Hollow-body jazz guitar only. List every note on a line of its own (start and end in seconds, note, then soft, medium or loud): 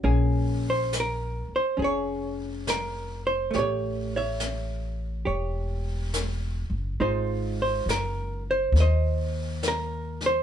0.04 3.50 A#3 soft
0.04 1.76 C#4 soft
0.04 1.78 G#4 soft
0.70 0.94 C5 medium
1.00 1.55 A#4 medium
1.56 1.81 C5 medium
1.77 3.52 C#4 soft
1.77 1.81 G#4 soft
1.82 3.51 G#4 soft
1.82 2.69 C#5 medium
2.70 3.22 A#4 medium
3.27 3.56 C5 medium
3.51 6.99 A3 soft
3.55 3.57 G4 soft
3.55 5.24 G4 medium
3.55 3.58 C#5 soft
3.59 4.15 C#5 medium
4.16 5.25 C#5 soft
4.16 5.26 E5 medium
5.25 7.00 G4 soft
5.25 7.01 C#5 soft
7.00 10.43 G#3 soft
7.00 10.43 D#4 soft
7.00 8.50 F4 soft
7.00 7.61 C5 medium
7.62 7.90 C5 medium
7.90 8.43 A#4 medium
8.51 8.79 C5 medium
8.80 10.25 C5 medium
8.80 9.67 D#5 medium
9.68 10.24 A#4 medium
10.26 10.43 C5 medium